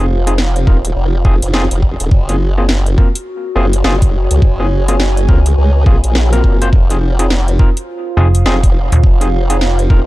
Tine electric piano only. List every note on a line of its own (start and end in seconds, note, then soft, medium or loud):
0.27 0.33 C4 medium
0.27 0.33 D#4 medium
0.27 0.33 F4 medium
0.27 0.33 G#4 medium
0.67 0.77 C4 medium
0.67 0.77 D#4 medium
0.67 0.77 F4 medium
0.67 0.77 A#4 medium
1.25 1.34 C4 medium
1.25 1.34 D#4 medium
1.25 1.34 F4 medium
1.25 1.34 G#4 loud
1.54 1.63 C4 loud
1.54 1.63 D#4 medium
1.54 1.63 F4 medium
1.54 1.63 G#4 loud
2.29 2.35 A#3 medium
2.29 2.35 C4 medium
2.29 2.35 F4 medium
2.29 2.35 G#4 medium
2.58 2.64 A#3 medium
2.58 2.64 C4 medium
2.58 2.64 F4 medium
2.58 2.64 G#4 medium
2.98 3.07 A#3 medium
2.98 3.07 C4 medium
2.98 3.07 F4 medium
2.98 3.07 A#4 medium
3.56 3.65 A#3 medium
3.56 3.65 C4 medium
3.56 3.65 F4 medium
3.56 3.65 G#4 loud
3.84 3.94 A#3 loud
3.84 3.94 C4 medium
3.84 3.94 F4 medium
3.84 3.94 G#4 loud
4.60 4.66 A#3 medium
4.60 4.66 C4 medium
4.60 4.66 F4 medium
4.60 4.66 G#4 medium
4.89 4.95 A#3 medium
4.89 4.95 C4 medium
4.89 4.95 F4 medium
4.89 4.95 G#4 medium
5.29 5.38 A#3 medium
5.29 5.38 C4 medium
5.29 5.38 F4 medium
5.29 5.38 A#4 medium
5.86 5.96 A#3 medium
5.86 5.96 C4 medium
5.86 5.96 F4 medium
5.86 5.96 G#4 medium
6.33 6.57 A#3 medium
6.33 6.57 C4 medium
6.33 6.57 F4 medium
6.33 6.57 A#4 medium
6.62 6.68 A#3 medium
6.62 6.68 C4 medium
6.62 6.68 F4 medium
6.62 6.68 C5 medium
6.91 6.97 C4 medium
6.91 6.97 D#4 medium
6.91 6.97 F4 medium
6.91 6.97 G#4 medium
7.19 7.25 C4 medium
7.19 7.25 D#4 medium
7.19 7.25 F4 medium
7.19 7.25 G#4 medium
7.60 7.69 C4 medium
7.60 7.69 D#4 medium
7.60 7.69 F4 medium
7.60 7.69 A#4 medium
8.17 8.26 C4 medium
8.17 8.27 D#4 medium
8.17 8.27 F4 medium
8.17 8.26 G#4 loud
8.46 8.55 C4 loud
8.46 8.55 D#4 medium
8.46 8.55 F4 medium
8.46 8.55 G#4 loud
9.21 9.27 C4 medium
9.21 9.27 D#4 medium
9.21 9.27 F4 medium
9.21 9.27 G#4 medium
9.50 9.56 C4 medium
9.50 9.56 D#4 medium
9.50 9.56 F4 medium
9.50 9.56 G#4 medium
9.90 10.00 C4 medium
9.90 10.00 D#4 medium
9.90 10.00 F4 medium
9.90 10.00 A#4 medium